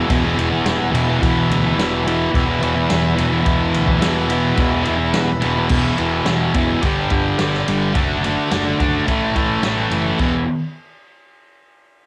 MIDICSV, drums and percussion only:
0, 0, Header, 1, 2, 480
1, 0, Start_track
1, 0, Tempo, 561272
1, 1044, Time_signature, 4, 2, 24, 8
1, 10318, End_track
2, 0, Start_track
2, 0, Title_t, "Drums"
2, 84, Note_on_c, 9, 51, 89
2, 85, Note_on_c, 9, 36, 105
2, 170, Note_off_c, 9, 36, 0
2, 170, Note_off_c, 9, 51, 0
2, 331, Note_on_c, 9, 51, 68
2, 417, Note_off_c, 9, 51, 0
2, 565, Note_on_c, 9, 38, 106
2, 565, Note_on_c, 9, 51, 86
2, 650, Note_off_c, 9, 38, 0
2, 650, Note_off_c, 9, 51, 0
2, 810, Note_on_c, 9, 51, 78
2, 896, Note_off_c, 9, 51, 0
2, 1045, Note_on_c, 9, 36, 106
2, 1050, Note_on_c, 9, 51, 88
2, 1130, Note_off_c, 9, 36, 0
2, 1135, Note_off_c, 9, 51, 0
2, 1295, Note_on_c, 9, 51, 71
2, 1380, Note_off_c, 9, 51, 0
2, 1534, Note_on_c, 9, 38, 107
2, 1534, Note_on_c, 9, 51, 85
2, 1619, Note_off_c, 9, 38, 0
2, 1619, Note_off_c, 9, 51, 0
2, 1774, Note_on_c, 9, 51, 78
2, 1860, Note_off_c, 9, 51, 0
2, 2004, Note_on_c, 9, 36, 107
2, 2009, Note_on_c, 9, 51, 85
2, 2089, Note_off_c, 9, 36, 0
2, 2095, Note_off_c, 9, 51, 0
2, 2246, Note_on_c, 9, 51, 68
2, 2331, Note_off_c, 9, 51, 0
2, 2479, Note_on_c, 9, 38, 114
2, 2479, Note_on_c, 9, 51, 105
2, 2564, Note_off_c, 9, 38, 0
2, 2564, Note_off_c, 9, 51, 0
2, 2722, Note_on_c, 9, 51, 76
2, 2808, Note_off_c, 9, 51, 0
2, 2958, Note_on_c, 9, 51, 91
2, 2959, Note_on_c, 9, 36, 101
2, 3044, Note_off_c, 9, 36, 0
2, 3044, Note_off_c, 9, 51, 0
2, 3202, Note_on_c, 9, 51, 78
2, 3287, Note_off_c, 9, 51, 0
2, 3318, Note_on_c, 9, 36, 82
2, 3403, Note_off_c, 9, 36, 0
2, 3439, Note_on_c, 9, 38, 106
2, 3439, Note_on_c, 9, 51, 99
2, 3525, Note_off_c, 9, 38, 0
2, 3525, Note_off_c, 9, 51, 0
2, 3675, Note_on_c, 9, 51, 80
2, 3761, Note_off_c, 9, 51, 0
2, 3912, Note_on_c, 9, 51, 88
2, 3915, Note_on_c, 9, 36, 105
2, 3998, Note_off_c, 9, 51, 0
2, 4001, Note_off_c, 9, 36, 0
2, 4151, Note_on_c, 9, 51, 60
2, 4236, Note_off_c, 9, 51, 0
2, 4392, Note_on_c, 9, 38, 114
2, 4392, Note_on_c, 9, 51, 98
2, 4477, Note_off_c, 9, 38, 0
2, 4477, Note_off_c, 9, 51, 0
2, 4632, Note_on_c, 9, 51, 66
2, 4717, Note_off_c, 9, 51, 0
2, 4869, Note_on_c, 9, 49, 106
2, 4877, Note_on_c, 9, 36, 112
2, 4954, Note_off_c, 9, 49, 0
2, 4962, Note_off_c, 9, 36, 0
2, 5112, Note_on_c, 9, 51, 64
2, 5198, Note_off_c, 9, 51, 0
2, 5352, Note_on_c, 9, 38, 109
2, 5352, Note_on_c, 9, 51, 87
2, 5437, Note_off_c, 9, 38, 0
2, 5437, Note_off_c, 9, 51, 0
2, 5596, Note_on_c, 9, 51, 79
2, 5601, Note_on_c, 9, 36, 88
2, 5681, Note_off_c, 9, 51, 0
2, 5686, Note_off_c, 9, 36, 0
2, 5837, Note_on_c, 9, 51, 91
2, 5841, Note_on_c, 9, 36, 78
2, 5922, Note_off_c, 9, 51, 0
2, 5926, Note_off_c, 9, 36, 0
2, 6073, Note_on_c, 9, 51, 63
2, 6080, Note_on_c, 9, 36, 84
2, 6159, Note_off_c, 9, 51, 0
2, 6166, Note_off_c, 9, 36, 0
2, 6318, Note_on_c, 9, 38, 106
2, 6318, Note_on_c, 9, 51, 95
2, 6404, Note_off_c, 9, 38, 0
2, 6404, Note_off_c, 9, 51, 0
2, 6448, Note_on_c, 9, 38, 30
2, 6534, Note_off_c, 9, 38, 0
2, 6567, Note_on_c, 9, 51, 80
2, 6653, Note_off_c, 9, 51, 0
2, 6799, Note_on_c, 9, 51, 86
2, 6804, Note_on_c, 9, 36, 100
2, 6885, Note_off_c, 9, 51, 0
2, 6890, Note_off_c, 9, 36, 0
2, 7048, Note_on_c, 9, 51, 72
2, 7134, Note_off_c, 9, 51, 0
2, 7281, Note_on_c, 9, 38, 103
2, 7281, Note_on_c, 9, 51, 97
2, 7366, Note_off_c, 9, 38, 0
2, 7366, Note_off_c, 9, 51, 0
2, 7525, Note_on_c, 9, 36, 89
2, 7526, Note_on_c, 9, 51, 68
2, 7611, Note_off_c, 9, 36, 0
2, 7612, Note_off_c, 9, 51, 0
2, 7764, Note_on_c, 9, 36, 79
2, 7765, Note_on_c, 9, 51, 82
2, 7849, Note_off_c, 9, 36, 0
2, 7850, Note_off_c, 9, 51, 0
2, 8004, Note_on_c, 9, 36, 81
2, 8004, Note_on_c, 9, 51, 66
2, 8089, Note_off_c, 9, 36, 0
2, 8090, Note_off_c, 9, 51, 0
2, 8238, Note_on_c, 9, 38, 104
2, 8238, Note_on_c, 9, 51, 88
2, 8323, Note_off_c, 9, 38, 0
2, 8323, Note_off_c, 9, 51, 0
2, 8479, Note_on_c, 9, 51, 64
2, 8565, Note_off_c, 9, 51, 0
2, 8717, Note_on_c, 9, 49, 77
2, 8720, Note_on_c, 9, 36, 100
2, 8802, Note_off_c, 9, 49, 0
2, 8806, Note_off_c, 9, 36, 0
2, 10318, End_track
0, 0, End_of_file